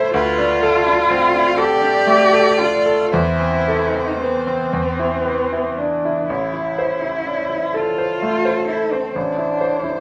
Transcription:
0.00 0.16 A3 medium
0.00 0.16 D4 medium
0.00 0.13 E4 medium
0.00 0.17 E4 medium
0.00 0.16 A4 medium
0.00 0.14 C5 loud
0.00 0.16 C5 medium
0.13 3.09 D2 medium
0.13 1.59 F4 loud
0.13 0.65 B4 loud
0.38 0.77 D4 medium
0.63 1.01 A4 medium
0.63 1.11 A4 medium
0.86 1.24 D4 medium
1.11 1.34 C4 medium
1.11 1.60 F5 medium
1.34 1.73 D4 medium
1.57 2.59 G4 loud
1.57 1.97 A4 medium
1.57 3.12 D5 loud
1.82 2.22 D4 medium
2.07 2.48 A3 medium
2.32 2.75 A4 medium
2.58 3.02 D4 medium
2.58 3.13 F4 loud
2.86 3.13 A4 medium
3.12 4.68 E2 medium
3.12 4.18 E4 medium
3.12 5.46 C5 medium
3.40 3.83 C4 soft
3.68 4.10 A4 medium
3.95 4.36 C4 soft
4.19 4.46 B3 soft
4.19 5.79 C4 loud
4.47 4.72 C4 medium
4.73 6.26 E2 medium
4.99 5.41 E4 soft
5.25 5.67 B4 soft
5.52 5.94 E4 soft
5.77 6.28 D4 medium
5.77 6.05 D4 soft
6.05 6.30 E4 soft
6.28 9.12 A1 medium
6.28 7.77 E4 medium
6.54 6.93 E4 soft
6.79 7.18 C5 soft
7.02 7.41 E4 soft
7.27 7.51 D4 soft
7.49 7.88 E4 soft
7.74 8.68 F4 loud
7.74 9.11 A4 medium
7.74 8.12 A4 soft
7.98 8.36 C5 soft
8.22 8.60 A3 soft
8.45 8.83 C5 medium
8.68 8.94 E4 medium
8.68 9.06 A4 soft
8.92 9.18 C4 medium
8.92 9.16 C5 soft
9.15 10.00 A1 medium
9.15 10.00 D4 medium
9.15 10.00 C5 medium
9.38 9.74 E4 soft
9.61 9.96 C5 soft
9.83 10.00 E4 soft

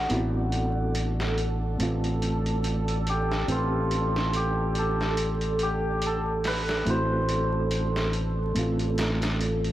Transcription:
0.00 9.72 D4 medium
0.00 2.99 F#4 medium
0.00 1.39 A4 medium
0.00 9.72 A4 medium
0.00 9.72 D5 medium
0.09 1.76 A1 medium
0.09 1.75 B3 medium
0.09 1.76 C4 medium
0.09 1.76 E4 medium
0.09 closed hi-hat medium
0.13 1.77 F#4 medium
0.52 closed hi-hat medium
0.95 closed hi-hat medium
1.20 snare soft
1.38 closed hi-hat medium
1.78 3.45 A1 medium
1.78 3.44 A3 medium
1.78 3.45 C4 medium
1.78 closed hi-hat medium
1.83 3.46 F4 medium
2.04 closed hi-hat soft
2.22 closed hi-hat medium
2.46 closed hi-hat soft
2.64 closed hi-hat medium
2.88 closed hi-hat soft
3.07 4.36 G4 medium
3.07 closed hi-hat medium
3.32 snare soft
3.48 6.83 A1 medium
3.48 6.82 C4 medium
3.48 6.88 F4 medium
3.48 6.83 G4 medium
3.48 closed hi-hat medium
3.52 6.84 B4 medium
3.91 closed hi-hat medium
4.16 snare soft
4.33 5.62 G4 medium
4.33 closed hi-hat medium
4.75 6.06 A4 medium
4.75 closed hi-hat medium
5.01 snare soft
5.17 closed hi-hat medium
5.41 closed hi-hat soft
5.59 8.76 G4 medium
5.59 closed hi-hat medium
6.02 closed hi-hat medium
6.06 6.17 A4 medium
6.44 6.96 B4 loud
6.44 snare soft
6.44 open hi-hat medium
6.69 snare soft
6.85 8.52 A1 medium
6.85 8.51 A3 medium
6.85 8.51 C4 medium
6.85 8.52 E4 medium
6.85 closed hi-hat medium
6.89 8.53 F#4 medium
6.89 9.54 C5 medium
7.29 closed hi-hat medium
7.71 closed hi-hat medium
7.96 snare medium
8.13 closed hi-hat medium
8.55 9.72 A1 medium
8.55 9.72 A3 medium
8.55 9.72 C4 medium
8.55 closed hi-hat medium
8.59 9.72 F4 medium
8.79 closed hi-hat soft
8.98 snare loud
8.98 closed hi-hat medium
9.22 snare medium
9.22 closed hi-hat medium
9.41 closed hi-hat medium
9.64 closed hi-hat soft

